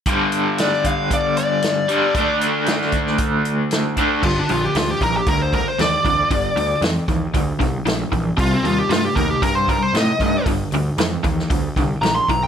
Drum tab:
CC |----------------|----------------|x---------------|----------------|
HH |x-x-x-x-x-x-x-x-|x-x-x-x-x-x-x-x-|--o-o-o-o-o-o-o-|o-o-o-o-o-o-o-o-|
SD |----oo------o---|----oo-o----o---|----o-------o---|----o-------o---|
BD |o-----o-o-------|o-----o-o-----o-|o-----o-o-o---o-|o-----o-o-o---o-|

CC |----------------|----------------|
HH |o-o-o-o-o-o-o-o-|o-o-o-o-o-o-o-o-|
SD |----o-------o---|----o--o----o---|
BD |o-----o-o-o---o-|o-----o-o-o---o-|